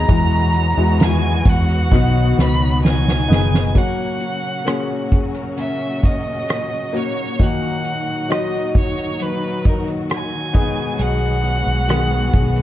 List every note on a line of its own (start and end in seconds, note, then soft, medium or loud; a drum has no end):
0.00 1.77 F#3 medium
0.00 1.88 F#3 medium
0.00 0.11 D#4 medium
0.00 0.18 D#4 medium
0.00 0.11 G#4 medium
0.00 2.22 B4 medium
0.00 1.05 A#5 loud
0.08 0.73 E2 medium
0.08 1.42 B2 medium
0.08 2.00 E3 medium
0.08 1.90 E3 medium
0.08 0.74 G#3 medium
0.08 1.90 G#3 medium
0.08 1.90 B3 medium
0.08 0.74 E4 medium
0.08 0.74 F#4 medium
0.08 3.72 F#4 medium
0.08 kick loud
0.08 closed hi-hat medium
0.54 3.29 F#4 medium
0.54 closed hi-hat medium
0.77 1.42 E2 medium
0.77 1.91 G#3 medium
0.77 1.92 E4 medium
0.77 1.91 F#4 medium
1.00 1.51 G#5 loud
1.00 snare loud
1.00 closed hi-hat medium
1.45 1.88 E2 medium
1.45 2.39 F#5 medium
1.45 kick loud
1.45 closed hi-hat medium
1.69 closed hi-hat medium
1.92 2.34 B1 medium
1.92 3.73 B2 medium
1.92 3.84 B2 medium
1.92 3.74 D#3 medium
1.92 3.74 F#3 medium
1.92 3.23 B3 medium
1.92 3.23 D#4 medium
1.92 3.74 D#4 medium
1.92 3.23 F#4 medium
1.92 kick medium
1.92 snare medium
2.37 3.26 C#2 medium
2.37 3.76 B4 medium
2.37 2.82 B5 medium
2.37 snare medium
2.84 3.79 G#5 loud
2.84 snare medium
3.08 snare medium
3.28 3.72 F#1 medium
3.28 3.72 B3 medium
3.28 3.72 D#4 medium
3.28 3.84 D#4 medium
3.28 3.73 G#4 medium
3.28 snare medium
3.54 snare medium
3.74 10.51 A#2 medium
3.74 5.08 C#3 soft
3.74 7.37 C#3 medium
3.74 7.40 F#3 medium
3.74 7.37 F#3 medium
3.74 4.61 A#3 medium
3.74 4.62 C#4 medium
3.74 7.37 C#4 medium
3.74 4.62 F#4 medium
3.74 7.37 F#4 medium
3.74 5.12 A#4 medium
3.74 5.13 F#5 medium
3.74 kick medium
3.74 closed hi-hat medium
4.20 6.94 F#4 soft
4.20 closed hi-hat soft
4.65 6.39 A#3 medium
4.65 6.39 C#4 medium
4.65 5.56 C#4 soft
4.65 6.40 G#4 medium
4.65 cross-stick loud
4.65 closed hi-hat medium
5.12 5.34 G#4 soft
5.12 kick medium
5.12 closed hi-hat medium
5.34 7.39 A#4 soft
5.34 closed hi-hat soft
5.57 6.02 C#4 medium
5.57 6.06 E5 medium
5.57 closed hi-hat medium
6.03 7.49 C#4 soft
6.03 6.98 D#5 medium
6.03 kick medium
6.03 closed hi-hat medium
6.49 cross-stick medium
6.49 closed hi-hat medium
6.93 7.37 A#3 medium
6.93 7.37 C#4 medium
6.93 7.37 F#4 medium
6.93 7.84 F#4 soft
6.93 7.44 C#5 medium
6.93 cross-stick soft
6.93 closed hi-hat medium
7.39 8.71 A#2 medium
7.39 10.89 D#3 medium
7.39 12.62 D#3 medium
7.39 12.62 F#3 medium
7.39 8.25 A#3 medium
7.39 8.26 D#4 medium
7.39 10.52 D#4 medium
7.39 12.62 F#4 medium
7.39 8.26 F#4 medium
7.39 8.75 A#4 medium
7.39 8.32 F#5 medium
7.39 kick medium
7.39 closed hi-hat medium
7.85 11.02 F#4 soft
7.85 closed hi-hat soft
8.29 10.01 F#3 medium
8.29 10.01 D#4 medium
8.29 9.65 D#4 medium
8.29 10.01 F#4 medium
8.29 8.73 D#5 medium
8.29 cross-stick medium
8.29 closed hi-hat medium
8.75 9.23 C#5 medium
8.75 kick medium
8.75 closed hi-hat medium
8.98 closed hi-hat soft
9.20 11.02 F#3 medium
9.20 9.66 B4 medium
9.20 closed hi-hat medium
9.65 11.88 D#4 medium
9.65 9.87 A#4 medium
9.65 kick medium
9.65 closed hi-hat medium
9.88 closed hi-hat soft
10.10 11.02 G#5 medium
10.10 cross-stick loud
10.10 closed hi-hat medium
10.53 10.98 B2 medium
10.53 12.62 G#3 medium
10.53 11.82 B3 medium
10.53 12.62 B3 medium
10.53 11.82 D#4 medium
10.53 11.82 G#4 medium
10.53 kick medium
10.53 cross-stick soft
10.53 closed hi-hat medium
10.99 11.63 B1 medium
10.99 12.62 B2 medium
10.99 12.33 G#4 medium
10.99 12.62 F#5 medium
10.99 closed hi-hat medium
11.44 12.62 F#4 medium
11.44 closed hi-hat soft
11.67 12.30 B1 medium
11.88 12.62 D#3 medium
11.88 12.62 B3 medium
11.88 12.62 G#4 medium
11.88 cross-stick medium
11.88 closed hi-hat medium
12.33 12.62 B1 medium
12.33 12.62 G#4 medium
12.33 kick medium
12.33 closed hi-hat medium
12.56 closed hi-hat soft